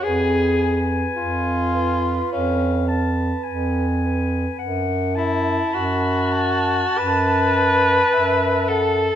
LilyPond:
<<
  \new Staff \with { instrumentName = "Clarinet" } { \time 4/4 \key fis \minor \tempo 4 = 53 aes''8 aes''4~ aes''16 r16 f''8 a''8 aes''4 | fis''8 a''8 b''8 a''4. e''8 fis''8 | }
  \new Staff \with { instrumentName = "Alto saxophone" } { \time 4/4 \key fis \minor ces''8 ces''4 ces''4 ces''4 ces''8 | r8 a''4 a''4 a''4 a''8 | }
  \new Staff \with { instrumentName = "Tenor saxophone" } { \time 4/4 \key fis \minor aes'8. r16 f'4 cis'8 r4. | r8 e'8 fis'4 b'4. a'8 | }
  \new Staff \with { instrumentName = "Bass clarinet" } { \clef bass \time 4/4 \key fis \minor f,4 f,4 f,4 f,4 | fis,4 fis,4 fis,4 fis,4 | }
>>